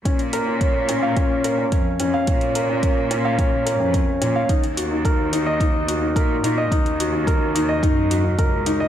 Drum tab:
HH |xxx-x-x-x-x-x-x-|xxx-x-x-x-x-x-x-|xxx-x-x-x-x-x-x-|xxx-x-x-x-x-x-x-|
BD |o---o---o---o---|o---o---o---o---|o---o---o---o---|o---o---o---o---|